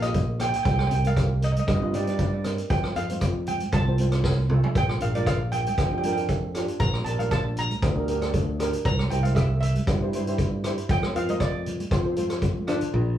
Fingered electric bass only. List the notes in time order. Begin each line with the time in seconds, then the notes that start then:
Already playing: A#1
0.65 C2
0.92 C2
1.68 G2
2.70 F2
2.95 F2
3.73 C2
4.75 A#1
5.01 A#1
5.78 F2
6.80 A#1
7.06 A#1
7.83 D2
8.85 C2
9.11 C2
9.87 G2
10.89 F2
11.15 F2
11.91 F2
12.94 A#1